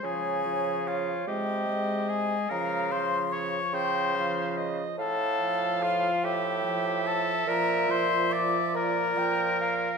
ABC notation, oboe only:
X:1
M:6/8
L:1/8
Q:3/8=48
K:Dblyd
V:1 name="Oboe"
A2 F G2 A | B c d c2 z | [K:F] A2 F G2 A | B c d B3 |]